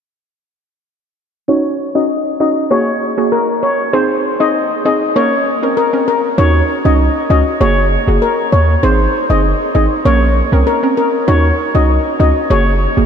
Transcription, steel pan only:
1.49 1.63 C#5 loud
1.95 2.08 D#5 medium
2.40 2.54 D#5 medium
2.71 3.15 C#5 loud
3.32 3.46 A#4 medium
3.63 3.77 C#5 medium
3.93 4.07 C5 loud
4.40 4.53 D#5 medium
4.86 4.99 D#5 medium
5.16 5.60 C#5 medium
5.77 5.91 A#4 medium
6.08 6.22 A#4 medium
6.38 6.52 C#5 loud
6.85 6.98 D#5 medium
7.30 7.44 D#5 medium
7.61 8.05 C#5 loud
8.22 8.36 A#4 medium
8.52 8.66 C#5 medium
8.83 8.97 C5 loud
9.30 9.42 D#5 medium
9.75 9.89 D#5 medium
10.05 10.50 C#5 medium
10.67 10.81 A#4 medium
10.97 11.11 A#4 medium
11.28 11.42 C#5 loud
11.75 11.87 D#5 medium
12.20 12.34 D#5 medium
12.51 12.95 C#5 loud

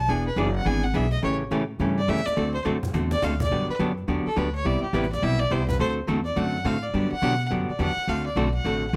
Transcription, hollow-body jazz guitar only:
0.08 0.28 E3 medium
0.08 0.28 B3 medium
0.08 0.29 D4 medium
0.08 0.29 G#4 medium
0.37 0.48 E3 medium
0.37 0.48 B3 medium
0.37 0.49 D4 medium
0.37 0.49 G#4 loud
0.65 0.85 E3 medium
0.65 0.85 B3 medium
0.65 0.85 D4 medium
0.65 0.86 G#4 medium
0.94 1.05 E3 medium
0.94 1.05 B3 medium
0.94 1.05 D4 medium
0.94 1.06 G#4 medium
1.22 1.42 C#3 medium
1.22 1.43 E3 medium
1.22 1.43 A3 medium
1.22 1.43 C#4 medium
1.22 1.43 G4 medium
1.51 1.63 C#3 medium
1.51 1.63 E3 medium
1.51 1.63 A3 medium
1.51 1.63 C#4 medium
1.51 1.63 G4 medium
1.80 2.00 C#3 medium
1.80 2.00 E3 medium
1.80 2.00 A3 medium
1.80 2.00 C#4 medium
1.80 2.00 G4 medium
2.08 2.19 C#3 medium
2.08 2.20 E3 medium
2.08 2.20 A3 medium
2.08 2.20 C#4 medium
2.08 2.20 G4 medium
2.36 2.57 D3 medium
2.36 2.57 A3 medium
2.36 2.57 C4 medium
2.36 2.57 F#4 medium
2.36 2.57 A4 medium
2.65 2.76 D3 medium
2.65 2.77 A3 medium
2.65 2.77 C4 medium
2.65 2.77 F#4 medium
2.65 2.77 A4 medium
2.93 3.14 D3 medium
2.93 3.14 A3 medium
2.93 3.14 C4 medium
2.93 3.14 F#4 medium
2.93 3.14 A4 medium
3.22 3.34 D3 medium
3.22 3.34 A3 medium
3.22 3.34 C4 medium
3.22 3.34 F#4 medium
3.22 3.34 A4 medium
3.51 3.71 D3 medium
3.51 3.71 F#3 medium
3.51 3.72 B3 medium
3.51 3.72 D4 medium
3.51 3.72 G4 medium
3.79 3.91 D3 medium
3.79 3.91 F#3 medium
3.79 3.91 B3 medium
3.79 3.91 D4 medium
3.79 3.91 G4 medium
4.08 4.28 D3 medium
4.08 4.28 F#3 medium
4.08 4.28 B3 medium
4.08 4.28 D4 medium
4.08 4.28 G4 medium
4.36 4.48 D3 medium
4.36 4.48 F#3 medium
4.36 4.48 B3 medium
4.36 4.48 D4 medium
4.36 4.48 G4 medium
4.65 4.85 C3 medium
4.65 4.85 G3 medium
4.65 4.85 B3 medium
4.65 4.85 E4 medium
4.65 4.86 G4 medium
4.94 5.05 C3 medium
4.94 5.05 G3 medium
4.94 5.05 B3 medium
4.94 5.05 E4 medium
4.94 5.05 G4 loud
5.22 5.42 C3 medium
5.22 5.42 G3 medium
5.22 5.42 B3 medium
5.22 5.43 E4 medium
5.22 5.43 G4 medium
5.51 5.62 C3 medium
5.51 5.62 G3 medium
5.51 5.63 B3 medium
5.51 5.63 E4 medium
5.51 5.63 G4 medium
5.79 5.99 D3 medium
5.79 6.00 A3 medium
5.79 6.00 C4 medium
5.79 6.00 F#4 medium
5.79 6.00 A4 medium
6.07 6.19 D3 medium
6.07 6.19 A3 medium
6.07 6.19 C4 medium
6.07 6.19 F#4 medium
6.07 6.20 A4 medium
6.36 6.56 D3 medium
6.36 6.56 A3 medium
6.36 6.57 C4 medium
6.36 6.57 F#4 medium
6.36 6.57 A4 medium
6.65 6.76 D3 medium
6.65 6.76 A3 medium
6.65 6.77 C4 medium
6.65 6.77 F#4 medium
6.65 6.77 A4 medium
6.94 7.14 D3 soft
6.94 7.14 F#3 medium
6.94 7.14 B3 medium
6.94 7.14 D4 medium
6.94 7.14 G4 medium
7.22 7.33 D3 medium
7.22 7.34 F#3 medium
7.22 7.34 B3 medium
7.22 7.34 D4 medium
7.22 7.34 G4 loud
7.51 7.71 D3 medium
7.51 7.71 F#3 medium
7.51 7.71 B3 medium
7.51 7.71 D4 medium
7.51 7.71 G4 medium
7.79 7.90 D3 medium
7.79 7.91 F#3 medium
7.79 7.91 B3 medium
7.79 7.91 D4 medium
7.79 7.91 G4 medium
8.08 8.28 D3 medium
8.08 8.28 A3 medium
8.08 8.28 C4 medium
8.08 8.28 F#4 medium
8.08 8.28 A4 medium
8.36 8.47 D3 medium
8.36 8.48 A3 medium
8.36 8.48 C4 medium
8.36 8.48 F#4 loud
8.36 8.48 A4 medium
8.65 8.85 D3 medium
8.65 8.85 A3 medium
8.65 8.85 C4 medium
8.65 8.85 F#4 medium
8.65 8.85 A4 medium

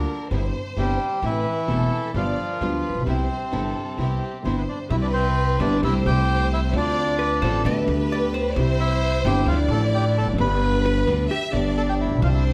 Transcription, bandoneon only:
0.00 0.28 D3 medium
0.00 0.28 D4 medium
0.78 1.20 G3 medium
0.78 1.25 G4 medium
1.24 2.11 E3 medium
1.24 2.12 E4 loud
2.16 3.03 F3 medium
2.16 3.03 F4 medium
3.08 4.64 C3 medium
3.08 4.44 C4 medium
4.45 4.55 C4 medium
4.45 4.55 C5 medium
4.58 4.63 B3 soft
4.58 4.63 B4 medium
4.69 4.79 D4 medium
4.69 4.79 D5 medium
4.90 4.97 E4 medium
4.90 4.95 E5 loud
5.02 5.08 D4 medium
5.02 5.07 D5 medium
5.13 5.56 C4 medium
5.13 5.60 C5 loud
5.61 5.81 D4 medium
5.61 5.81 D5 loud
5.84 5.94 E4 medium
5.84 5.94 E5 loud
6.07 6.49 G4 medium
6.07 6.48 G5 loud
6.53 6.60 E4 medium
6.53 6.60 E5 loud
6.69 6.74 E5 medium
6.76 7.62 D4 medium
6.76 7.62 D5 loud
8.80 9.22 E4 medium
8.80 9.22 E5 loud
9.26 9.46 G4 medium
9.26 9.48 G5 loud
9.48 9.58 F4 medium
9.48 9.58 F5 medium
9.71 9.81 A4 medium
9.71 9.81 A5 loud
9.95 10.05 G4 medium
9.95 10.04 G5 loud
10.18 10.27 A4 medium
10.18 10.27 A5 loud
10.40 11.04 B4 medium
10.40 11.04 B5 loud
11.78 11.82 A4 medium
11.78 11.82 A5 loud
11.89 11.94 G4 medium
11.89 11.94 G5 loud
12.00 12.21 E4 medium
12.00 12.21 E5 medium
12.23 12.29 F4 medium
12.23 12.28 F5 medium
12.34 12.44 E4 medium
12.34 12.44 E5 medium

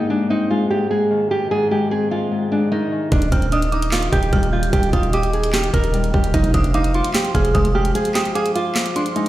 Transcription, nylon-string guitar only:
0.10 0.28 D4 medium
0.30 0.48 D#4 medium
0.50 0.68 F4 medium
0.70 0.88 G4 medium
0.91 1.28 G#4 medium
1.31 1.49 G4 medium
1.51 1.69 G#4 medium
1.71 1.89 G4 medium
1.91 2.09 G#4 medium
2.11 2.49 F4 medium
2.52 2.69 D4 medium
2.72 3.10 D#4 loud
3.12 3.30 D4 loud
3.32 3.50 C4 medium
3.52 3.70 D4 medium
3.72 3.90 D#4 medium
3.92 4.10 F4 medium
4.12 4.50 G4 medium
4.53 4.71 F4 medium
4.73 4.91 G4 loud
4.93 5.11 F4 medium
5.13 5.31 G4 medium
5.33 5.51 G#4 medium
5.53 5.71 G4 medium
5.73 6.11 A#4 medium
6.14 6.32 G4 medium
6.34 6.52 D#4 loud
6.54 6.72 D4 medium
6.74 6.92 D#4 medium
6.94 7.12 F4 medium
7.15 7.32 G4 medium
7.35 7.73 G#4 medium
7.75 7.93 G4 medium
7.95 8.13 G#4 medium
8.15 8.33 G4 medium
8.35 8.53 G#4 medium
8.55 8.93 F4 medium
8.96 9.13 D4 medium
9.16 9.29 D#4 medium

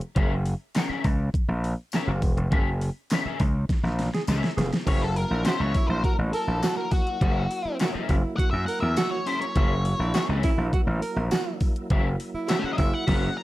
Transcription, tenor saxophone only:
4.14 4.23 G#4 medium
4.57 4.76 G#4 medium
5.32 5.43 E4 loud
5.46 5.54 F#4 loud
5.77 5.99 E4 loud
6.05 6.13 F#4 medium
6.34 6.57 A#4 loud
6.63 6.86 F#4 loud
7.66 7.77 E4 medium
7.81 7.89 F#4 loud
8.10 8.33 E4 loud
8.39 8.47 F#4 medium
8.68 8.92 A#4 loud
8.97 9.21 F#4 loud
10.00 10.12 E4 medium
10.14 10.23 F#4 loud
10.44 10.67 E4 loud
10.73 10.82 F#4 medium
11.02 11.25 A#4 loud
11.31 11.55 F#4 loud
12.35 12.46 E4 loud
12.49 12.58 F#4 loud
12.78 13.02 E4 loud
13.06 13.22 F#4 medium

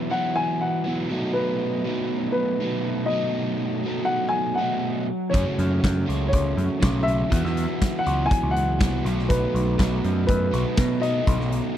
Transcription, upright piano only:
0.00 0.14 E5 medium
0.11 0.37 F#5 medium
0.36 0.62 G#5 loud
0.61 1.08 F#5 medium
1.33 2.31 B4 medium
2.32 3.11 B4 medium
3.06 4.10 D#5 medium
4.05 4.33 F#5 medium
4.29 4.57 G#5 loud
4.55 5.03 F#5 medium
5.30 6.27 C#5 medium
6.28 7.07 C#5 medium
7.03 8.00 E5 loud
7.99 8.28 F#5 medium
8.26 8.51 G#5 loud
8.51 8.99 F#5 loud
9.29 10.25 B4 medium
10.27 11.04 B4 medium
11.01 11.78 D#5 medium

